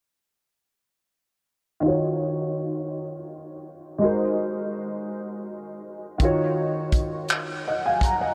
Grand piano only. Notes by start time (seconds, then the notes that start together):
1.80 D#3 D#4 F4
1.86 F#4 C#5
3.98 G#3 D#4 F#4
4.04 A#4 C5
6.18 D#3 D#4 F4
6.23 F#4 C#5
7.68 D#5 F#5
7.86 F5 G#5
8.04 F#5 A#5
8.21 D#5 F#5